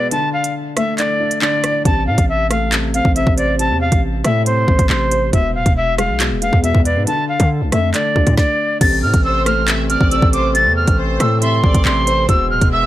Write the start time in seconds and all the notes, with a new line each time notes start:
Already playing: B2 G#3 B3 B4
0.11 D3 A5, closed hi-hat
0.33 F5
0.44 closed hi-hat
0.77 A3 E5, cross-stick, closed hi-hat
0.98 D3 D5, clap, closed hi-hat
1.20 D4
1.31 closed hi-hat
1.42 D3 D5, clap
1.64 D5, cross-stick, closed hi-hat
1.85 A1 C3 A5, kick, closed hi-hat
2.07 A2 F5
2.18 A1, kick, closed hi-hat
2.29 E5
2.50 A3 F5, cross-stick, closed hi-hat
2.72 C3, clap, closed hi-hat
2.94 C4 F5, closed hi-hat
3.05 A1, kick
3.16 C3 E5, closed hi-hat
3.27 A1, kick
3.37 C5 D5, closed hi-hat
3.59 C3 A5, closed hi-hat
3.70 E2
3.81 F5
3.92 A1, kick, closed hi-hat
4.24 A2 A3 E5, cross-stick, closed hi-hat
4.46 C3 C5, closed hi-hat
4.68 A1 C4, kick
4.79 A1, kick, closed hi-hat
4.90 A1 C3 C5, clap
5.11 C5, closed hi-hat
5.33 E1 B2 E5, kick, closed hi-hat
5.55 D1 F5
5.66 E1, kick, closed hi-hat
5.77 E5
5.98 G#3 F5, cross-stick, closed hi-hat
6.09 B1
6.20 B2, clap, closed hi-hat
6.31 E1
6.42 B3 F5, closed hi-hat
6.53 E2, kick
6.63 B2 E5, closed hi-hat
6.75 E2, kick
6.85 B4 D5, closed hi-hat
6.96 G#2
7.07 D3 A5, closed hi-hat
7.29 F5
7.40 D3, kick, closed hi-hat
7.61 C2
7.72 F2 A3 E5, cross-stick, closed hi-hat
7.94 D3 D5, clap, closed hi-hat
8.16 D2 D4, kick
8.27 A2, kick, closed hi-hat
8.37 D5, kick, snare
8.81 A1 C3 E3 A3 C4 A4 A6, kick, closed hi-hat, crash
9.03 A2 F6
9.14 A1, kick, closed hi-hat
9.24 C5 E6
9.46 A3 F6, cross-stick, closed hi-hat
9.68 C3 E5, clap, closed hi-hat
9.90 C4 D5 F6, closed hi-hat
10.01 A1, kick
10.11 C3 E6, closed hi-hat
10.22 A1, kick
10.33 C5 D6, closed hi-hat
10.55 C3 A6, closed hi-hat
10.66 E2
10.76 F6
10.87 A1, kick, closed hi-hat
10.98 C5
11.20 A2 A3 E6, cross-stick, closed hi-hat
11.42 C3 E5 C6, closed hi-hat
11.64 A1 C4 D5, kick
11.74 A1, kick, closed hi-hat
11.85 A1 C3 C6, clap
12.07 C5, closed hi-hat
12.29 E1 B2 G#3 B3 G#4 E6, kick, closed hi-hat
12.50 D1 F6
12.61 E1, kick, closed hi-hat
12.72 E5 E6